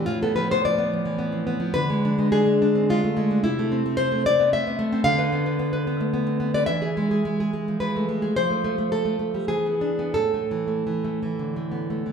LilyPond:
\new Staff \with { instrumentName = "Nylon-string guitar" } { \time 3/4 \key a \minor \tempo 4 = 108 << { f'16 a'16 b'16 c''16 d''4. r8 | b'4 aes'4 f'4 | e'4 c''8 d''8 e''4 | f''2~ f''8. d''16 |
e''2 b'8 r8 | c''4 a'4 gis'4 | a'2~ a'8 r8 | } \\ { a,16 b16 f16 b16 f16 b16 f16 e16 b16 c'16 b16 f16 | d16 aes16 d'16 aes16 d'16 aes16 d'16 c'16 aes16 a16 aes16 d'16 | c16 a16 c'16 a16 c'16 a16 c'16 b16 a16 b16 a16 c'16 | d16 b'16 b16 b'16 b16 b'16 b16 a16 b16 c'16 b16 b'16 |
e16 gis'16 gis16 gis'16 gis16 gis'16 gis16 f16 gis16 a16 gis16 gis'16 | f16 a16 a16 a16 a16 a16 a16 g16 e16 b16 d'16 b16 | a,16 a16 e16 a16 e16 a16 e16 d16 a16 b16 a16 e16 | } >> }